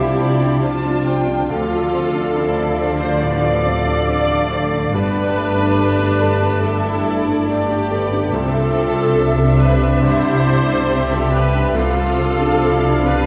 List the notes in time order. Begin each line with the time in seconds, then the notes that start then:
Already playing: C2 C3 F3 C4 D4 E4 F4 G4 C5 D5 E5 F5
0.00 F3
0.20 C4 D5
0.41 D4
0.62 C4 D4 F4 A5
0.85 D4
1.07 C5 G5
1.28 D4
1.49 D2 C3 D3 F3 F4 A4 D5 F5
1.71 F4
1.94 C4
2.14 D4
2.35 C4 E4 D5
2.58 D4
2.78 D4 C5
3.00 D4 A4 C5
3.21 A2 B3 A4 D5
3.43 F4
3.64 A3 C4
3.87 D4
4.08 C4
4.28 D4
4.51 C5
4.72 D4
4.93 G1 G2 A3 B3 D4 G4 B4 D5 A5
5.17 G4
5.36 A3 D4
5.57 D4
5.79 A3 D5
5.99 D4
6.21 A4
6.43 D4
6.63 D3 D4 E4 A4 E5
6.85 G4
7.06 A3 D5
7.28 D4
7.49 A3 D4 G4 D5
7.71 D4
7.91 B3 A4
8.12 D4
8.32 C2 C3 D3 C4 D4 F4 A4 D5 E5
8.54 E5
8.74 C4
8.96 D4
9.17 C4 D4
9.39 D4
9.60 G4 B4 C5
9.82 D4
10.02 G2 E4 G4 C5
10.25 E4
10.46 C4
10.68 D4
10.89 C4 G4
11.11 D4 F4 A4
11.33 G4 B4 C5
11.54 D4
11.74 C2 C3 F3 D4 F4 A4 D5 F5
11.97 F4
12.18 C4
12.40 D4
12.61 C4 E4
12.84 D4
13.05 D4 G4 B4 C5